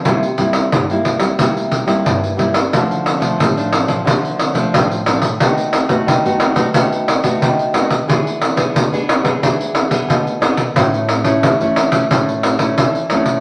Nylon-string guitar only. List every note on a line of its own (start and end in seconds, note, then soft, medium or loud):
0.06 0.69 C3 medium
0.06 0.24 G3 soft
0.06 0.25 A#3 medium
0.06 0.25 E4 medium
0.38 0.69 G3 medium
0.38 0.70 A#3 medium
0.38 0.70 E4 medium
0.72 1.36 G2 medium
0.90 1.17 G3 medium
0.90 1.18 A#3 medium
0.90 1.18 E4 medium
1.20 1.32 G3 medium
1.20 1.33 A#3 medium
1.20 1.33 E4 medium
1.40 2.03 C3 medium
1.40 1.84 G3 medium
1.40 1.84 A#3 medium
1.40 1.84 E4 medium
1.86 2.32 G3 medium
1.86 2.33 A#3 medium
1.86 2.33 E4 medium
2.05 2.69 G2 medium
2.37 2.58 G3 medium
2.37 2.58 A#3 soft
2.37 2.58 E4 medium
2.73 3.36 D3 medium
2.73 3.17 F3 medium
2.73 3.17 A3 medium
2.73 3.18 D4 medium
3.20 3.49 F3 medium
3.20 3.50 A3 medium
3.20 3.50 D4 medium
3.38 4.02 A2 medium
3.56 3.84 F3 medium
3.56 3.85 A3 medium
3.56 3.85 D4 medium
3.87 4.00 F3 medium
3.87 4.00 A3 medium
3.87 4.00 D4 medium
4.04 4.69 D3 medium
4.04 4.51 F3 medium
4.04 4.51 A3 medium
4.04 4.51 D4 medium
4.54 5.00 F3 medium
4.54 5.00 A3 medium
4.54 5.01 D4 medium
4.74 5.37 A2 medium
5.07 5.27 F3 soft
5.07 5.27 A3 medium
5.07 5.27 D4 medium
5.40 6.04 D#3 medium
5.40 5.86 A3 medium
5.40 5.86 B3 medium
5.40 5.86 F#4 medium
5.89 6.18 A3 medium
5.89 6.18 B3 medium
5.89 6.18 F#4 medium
6.07 6.71 D#3 medium
6.25 6.53 A3 medium
6.25 6.53 B3 medium
6.25 6.53 F#4 medium
6.55 6.68 A3 medium
6.55 6.68 B3 medium
6.55 6.69 F#4 medium
6.75 7.38 D#3 medium
6.75 7.06 A3 medium
6.75 7.06 B3 medium
6.75 7.06 F#4 medium
7.23 7.69 A3 medium
7.23 7.69 B3 medium
7.23 7.69 F#4 medium
7.42 8.05 D#3 medium
7.73 7.94 A3 medium
7.73 7.94 B3 medium
7.73 7.94 F#4 medium
8.08 8.72 E3 medium
8.08 8.53 B3 medium
8.08 8.53 D4 medium
8.08 8.53 G#4 medium
8.56 8.86 B3 medium
8.56 8.86 D4 medium
8.56 8.86 G#4 medium
8.74 9.38 B2 medium
8.92 9.21 B3 medium
8.92 9.21 D4 medium
8.92 9.21 G#4 medium
9.24 9.36 B3 medium
9.24 9.36 D4 medium
9.24 9.37 G#4 medium
9.42 10.06 E3 medium
9.42 9.87 B3 medium
9.42 9.87 D4 medium
9.42 9.88 G#4 medium
9.91 10.37 B3 medium
9.91 10.37 D4 medium
9.91 10.37 G#4 medium
10.09 10.73 B2 medium
10.41 10.62 B3 medium
10.41 10.62 D4 medium
10.41 10.62 G#4 medium
10.76 11.40 A2 medium
10.76 11.08 A3 medium
10.76 11.08 C#4 medium
10.76 11.08 E4 medium
11.24 11.54 A3 medium
11.24 11.54 C#4 medium
11.24 11.54 E4 medium
11.44 12.07 E3 medium
11.61 11.89 A3 medium
11.61 11.89 C#4 medium
11.61 11.89 E4 medium
11.92 12.04 A3 medium
11.92 12.05 C#4 medium
11.92 12.05 E4 medium
12.10 12.74 A2 medium
12.10 12.56 A3 medium
12.10 12.56 C#4 medium
12.10 12.56 E4 medium
12.59 13.05 A3 medium
12.59 13.05 C#4 medium
12.59 13.05 E4 medium
12.79 13.40 E3 medium
13.11 13.40 A3 medium
13.11 13.40 C#4 soft
13.11 13.40 E4 medium